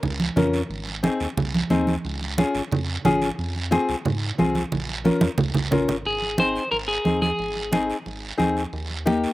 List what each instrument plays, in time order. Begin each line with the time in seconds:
0.03 analog synth bass C#2, high conga, low conga, long guiro
0.20 high conga
0.36 analog synth bass F2, nylon-string guitar C#4 F4 A#4, high conga, low conga, short guiro
0.54 short guiro
0.70 analog synth bass G#1, long guiro
0.87 high conga
1.03 nylon-string guitar C4 D#4 G#4, high conga, short guiro
1.20 analog synth bass D#2, short guiro
1.37 analog synth bass C2, high conga, low conga, long guiro
1.54 high conga
1.70 analog synth bass D#2, nylon-string guitar C4 D#4 G#4, high conga, short guiro
1.87 high conga, short guiro
2.05 analog synth bass C#2, long guiro
2.22 high conga
2.38 nylon-string guitar C#4 F4 G#4, high conga, short guiro
2.55 analog synth bass G#1, short guiro
2.72 analog synth bass F2, high conga, low conga, long guiro
3.05 analog synth bass G#1, nylon-string guitar C#4 F4 G#4, high conga, low conga, short guiro
3.22 short guiro
3.39 analog synth bass F2, long guiro
3.56 high conga
3.71 nylon-string guitar C4 F4 G#4, high conga, short guiro
3.89 analog synth bass C2, short guiro
4.05 analog synth bass G#2, high conga, low conga, long guiro
4.38 analog synth bass C2, nylon-string guitar C4 F4 G#4, high conga, short guiro
4.55 high conga, short guiro
4.72 analog synth bass A#1, low conga, long guiro
4.89 high conga
5.05 nylon-string guitar C#4 F4 A#4, high conga, short guiro
5.21 analog synth bass F2, high conga, short guiro
5.38 analog synth bass C#2, low conga, long guiro
5.54 analog synth bass C2, low conga
5.71 analog synth bass A#1, nylon-string guitar C#4 F4 A#4, low conga, short guiro
5.89 analog synth bass G#1, low conga, short guiro
6.05 analog synth bass G#1, clean electric guitar G#4, long guiro
6.22 high conga
6.38 nylon-string guitar C4 D#4 G#4, clean electric guitar C5, high conga, short guiro
6.56 short guiro
6.71 analog synth bass G#1, clean electric guitar A#4, high conga, long guiro
6.88 clean electric guitar G#4
7.05 analog synth bass D#2, nylon-string guitar C4 D#4 G#4, high conga, short guiro
7.22 clean electric guitar G#4, high conga, short guiro
7.39 analog synth bass G#1, long guiro
7.56 high conga
7.72 nylon-string guitar C4 D#4 G#4, high conga, short guiro
7.90 short guiro
8.06 analog synth bass G#1, high conga, long guiro
8.38 analog synth bass D#2, nylon-string guitar C4 D#4 G#4, high conga, short guiro
8.57 short guiro
8.73 analog synth bass D#2, long guiro
8.90 high conga
9.05 nylon-string guitar A#3 D#4 G4, high conga, short guiro
9.24 short guiro